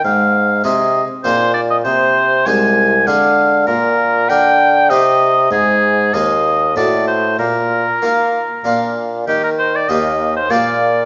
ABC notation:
X:1
M:3/4
L:1/16
Q:1/4=98
K:Ablyd
V:1 name="Oboe"
f4 e3 z c2 d e | c4 a4 f4 | B4 g4 e4 | A4 e4 d2 c2 |
B8- B2 z2 | G B c d e3 c d4 |]
V:2 name="Harpsichord"
z4 [CEA]4 [CEA]4 | z4 [A,EA]4 [A,DA]4 | z4 [DB]4 [CEG]4 | z4 [CEA]4 [=A,E^F]4 |
z4 [EF]4 [DF]4 | z4 [B,EG]4 [B,FA]4 |]
V:3 name="Harpsichord" clef=bass
A,,4 C,2 z2 B,,4 | C,4 C,,4 D,4 | B,,4 D,4 C,4 | A,,4 E,,4 =A,,4 |
B,,4 B,2 z2 B,,4 | E,4 E,,4 B,,4 |]
V:4 name="Bassoon" clef=bass
A,,4 C,2 z2 B,,4 | C,4 C,,4 D,4 | B,,4 D,4 C,4 | A,,4 E,,4 =A,,4 |
B,,4 B,2 z2 B,,4 | E,4 E,,4 B,,4 |]